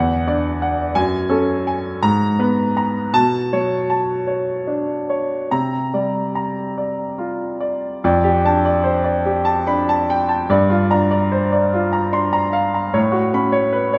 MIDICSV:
0, 0, Header, 1, 2, 480
1, 0, Start_track
1, 0, Tempo, 700935
1, 660, Time_signature, 6, 3, 24, 8
1, 1635, Tempo, 760456
1, 3075, Tempo, 832178
1, 6915, Tempo, 803213
1, 8501, End_track
2, 0, Start_track
2, 0, Title_t, "Grand piano"
2, 0, Program_c, 0, 0
2, 0, Note_on_c, 0, 40, 56
2, 0, Note_on_c, 0, 78, 60
2, 56, Control_c, 0, 64, 127
2, 187, Note_on_c, 0, 62, 46
2, 189, Note_on_c, 0, 74, 54
2, 331, Note_off_c, 0, 78, 0
2, 425, Note_on_c, 0, 78, 52
2, 564, Note_off_c, 0, 62, 0
2, 565, Note_off_c, 0, 74, 0
2, 641, Note_off_c, 0, 40, 0
2, 652, Note_on_c, 0, 80, 75
2, 654, Note_on_c, 0, 42, 64
2, 660, Note_off_c, 0, 78, 0
2, 669, Control_c, 0, 64, 0
2, 775, Control_c, 0, 64, 127
2, 886, Note_on_c, 0, 69, 56
2, 889, Note_on_c, 0, 61, 48
2, 1041, Note_off_c, 0, 80, 0
2, 1144, Note_on_c, 0, 80, 53
2, 1282, Note_off_c, 0, 69, 0
2, 1283, Note_off_c, 0, 61, 0
2, 1361, Note_off_c, 0, 42, 0
2, 1387, Note_on_c, 0, 44, 58
2, 1387, Note_on_c, 0, 82, 72
2, 1388, Note_off_c, 0, 80, 0
2, 1397, Control_c, 0, 64, 0
2, 1504, Control_c, 0, 64, 127
2, 1637, Note_on_c, 0, 59, 49
2, 1640, Note_on_c, 0, 71, 49
2, 1775, Note_off_c, 0, 82, 0
2, 1875, Note_on_c, 0, 82, 52
2, 2015, Note_off_c, 0, 59, 0
2, 2017, Note_off_c, 0, 71, 0
2, 2089, Note_off_c, 0, 44, 0
2, 2106, Note_on_c, 0, 47, 64
2, 2108, Note_on_c, 0, 81, 76
2, 2112, Note_off_c, 0, 82, 0
2, 2121, Control_c, 0, 64, 0
2, 2221, Control_c, 0, 64, 127
2, 2354, Note_on_c, 0, 54, 42
2, 2355, Note_on_c, 0, 73, 50
2, 2487, Note_off_c, 0, 81, 0
2, 2588, Note_on_c, 0, 81, 50
2, 2729, Note_off_c, 0, 54, 0
2, 2729, Note_off_c, 0, 73, 0
2, 2824, Note_on_c, 0, 73, 42
2, 2976, Note_off_c, 0, 81, 0
2, 3078, Note_on_c, 0, 62, 39
2, 3216, Note_off_c, 0, 73, 0
2, 3321, Note_on_c, 0, 73, 42
2, 3460, Note_off_c, 0, 62, 0
2, 3532, Note_off_c, 0, 47, 0
2, 3562, Note_off_c, 0, 73, 0
2, 3562, Note_on_c, 0, 82, 57
2, 3565, Note_on_c, 0, 48, 49
2, 3568, Control_c, 0, 64, 0
2, 3675, Control_c, 0, 64, 127
2, 3806, Note_on_c, 0, 55, 37
2, 3808, Note_on_c, 0, 74, 40
2, 3950, Note_off_c, 0, 82, 0
2, 4047, Note_on_c, 0, 82, 40
2, 4185, Note_off_c, 0, 55, 0
2, 4186, Note_off_c, 0, 74, 0
2, 4291, Note_on_c, 0, 74, 34
2, 4419, Note_off_c, 0, 82, 0
2, 4525, Note_on_c, 0, 65, 37
2, 4663, Note_off_c, 0, 74, 0
2, 4768, Note_on_c, 0, 74, 40
2, 4907, Note_off_c, 0, 65, 0
2, 4979, Note_off_c, 0, 48, 0
2, 5006, Note_off_c, 0, 74, 0
2, 5009, Control_c, 0, 64, 0
2, 5021, Note_on_c, 0, 41, 66
2, 5023, Note_on_c, 0, 74, 63
2, 5101, Control_c, 0, 64, 127
2, 5134, Note_on_c, 0, 67, 56
2, 5205, Note_off_c, 0, 74, 0
2, 5255, Note_on_c, 0, 62, 46
2, 5259, Note_on_c, 0, 81, 55
2, 5319, Note_off_c, 0, 67, 0
2, 5372, Note_on_c, 0, 74, 52
2, 5440, Note_off_c, 0, 81, 0
2, 5480, Note_on_c, 0, 72, 43
2, 5554, Note_off_c, 0, 74, 0
2, 5596, Note_off_c, 0, 72, 0
2, 5597, Note_on_c, 0, 74, 50
2, 5626, Note_off_c, 0, 62, 0
2, 5720, Note_on_c, 0, 67, 47
2, 5786, Note_off_c, 0, 74, 0
2, 5832, Note_on_c, 0, 81, 56
2, 5910, Note_off_c, 0, 67, 0
2, 5960, Note_on_c, 0, 83, 59
2, 5961, Note_on_c, 0, 62, 47
2, 6028, Note_off_c, 0, 81, 0
2, 6079, Note_off_c, 0, 83, 0
2, 6086, Note_on_c, 0, 81, 55
2, 6207, Note_on_c, 0, 79, 57
2, 6273, Note_off_c, 0, 81, 0
2, 6316, Note_on_c, 0, 81, 48
2, 6343, Note_off_c, 0, 62, 0
2, 6393, Note_off_c, 0, 79, 0
2, 6424, Note_off_c, 0, 41, 0
2, 6435, Note_off_c, 0, 81, 0
2, 6435, Note_on_c, 0, 43, 66
2, 6439, Note_on_c, 0, 74, 62
2, 6444, Control_c, 0, 64, 0
2, 6538, Control_c, 0, 64, 127
2, 6552, Note_on_c, 0, 65, 53
2, 6628, Note_off_c, 0, 74, 0
2, 6672, Note_on_c, 0, 62, 47
2, 6673, Note_on_c, 0, 82, 52
2, 6746, Note_off_c, 0, 65, 0
2, 6790, Note_on_c, 0, 74, 55
2, 6866, Note_off_c, 0, 82, 0
2, 6910, Note_on_c, 0, 72, 48
2, 6986, Note_off_c, 0, 74, 0
2, 7031, Note_on_c, 0, 74, 51
2, 7035, Note_off_c, 0, 72, 0
2, 7061, Note_off_c, 0, 62, 0
2, 7160, Note_on_c, 0, 65, 53
2, 7230, Note_off_c, 0, 74, 0
2, 7273, Note_on_c, 0, 82, 52
2, 7355, Note_off_c, 0, 65, 0
2, 7393, Note_on_c, 0, 62, 50
2, 7396, Note_on_c, 0, 84, 57
2, 7473, Note_off_c, 0, 82, 0
2, 7513, Note_on_c, 0, 82, 54
2, 7522, Note_off_c, 0, 84, 0
2, 7634, Note_on_c, 0, 77, 53
2, 7714, Note_off_c, 0, 82, 0
2, 7762, Note_on_c, 0, 82, 50
2, 7787, Note_off_c, 0, 62, 0
2, 7834, Note_off_c, 0, 77, 0
2, 7864, Note_off_c, 0, 43, 0
2, 7877, Note_on_c, 0, 45, 62
2, 7877, Note_on_c, 0, 73, 55
2, 7885, Note_off_c, 0, 82, 0
2, 7900, Control_c, 0, 64, 0
2, 7985, Note_on_c, 0, 66, 53
2, 7994, Control_c, 0, 64, 127
2, 8070, Note_off_c, 0, 73, 0
2, 8115, Note_on_c, 0, 61, 48
2, 8119, Note_on_c, 0, 83, 55
2, 8182, Note_off_c, 0, 66, 0
2, 8228, Note_on_c, 0, 73, 55
2, 8308, Note_off_c, 0, 83, 0
2, 8349, Note_on_c, 0, 71, 45
2, 8422, Note_off_c, 0, 73, 0
2, 8471, Note_off_c, 0, 71, 0
2, 8473, Note_on_c, 0, 73, 53
2, 8495, Note_off_c, 0, 61, 0
2, 8501, Note_off_c, 0, 45, 0
2, 8501, Note_off_c, 0, 73, 0
2, 8501, End_track
0, 0, End_of_file